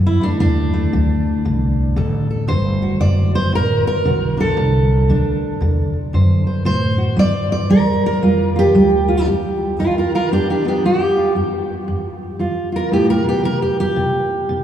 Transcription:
Already playing: F#2 D3
0.06 E4
0.21 A3 D4
0.40 D#2 D3 D4
0.74 A3
0.93 D2 D3
1.45 C2 D3
1.96 A1 D3 A4
2.30 A4
2.48 G1 D3 C5
2.82 F#4
3.00 F#1 D3 D5
3.35 C5
3.53 A1 D3 A#4
3.84 A#4, muted upright bass stroke
4.05 B1 D3 F#4
4.37 D4 A4
4.57 C2 D3
5.08 D2 D3 D4
5.61 E2 D3
5.93 muted upright bass stroke
6.13 F#2 D3 C5
6.47 C5
6.65 A2 D3 C5
6.98 F#4
7.17 G2 G3 D5
7.52 D5
7.70 E2 G3 A#4
8.02 muted upright bass stroke
8.06 A#4
8.22 F2 G3 F4
8.56 F4 G4
8.75 D2 G3
9.08 F4
9.27 G2 G4
9.79 G2 F4 A#4
9.98 F4 A#4
10.15 F4 A#4
10.32 G2 D4 G4
10.50 D4 G4
10.65 B3 D4 G4
10.84 G2 G4
11.17 F4
11.35 G2 G4
11.88 G2
12.39 G2 F4
12.72 F4 A#4
12.92 A2 G4
13.10 A#4
13.24 B2
13.29 G4
13.43 C3 A#4
13.62 G4
13.80 G4
13.96 C3
14.49 C3

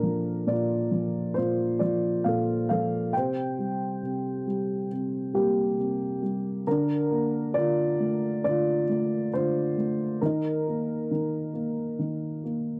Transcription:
Already playing: A#2 D4 A#4
0.03 F3
0.47 A#2 F4 D5
0.91 F3
1.34 A#2 F4 C5
1.79 F3 D5
1.84 F4
2.24 A#2 F5
2.28 A4
2.69 F3 A4 F5
3.13 C3 C5 G5
3.59 G3
4.03 C3
4.47 G3
4.91 C3
5.34 G3 A#3 G4
5.77 C3
6.22 G3
6.67 D3 A#4
6.71 D4
7.11 A#3
7.54 D3 F4 D5
8.00 A3
8.44 D3 D5
8.49 F4
8.89 A3
9.33 D3 F4 C5
9.78 A3
10.21 D#3 A#4
10.26 D#4
10.67 A#3
11.11 D#3
11.54 A#3
11.99 D#3
12.44 A#3

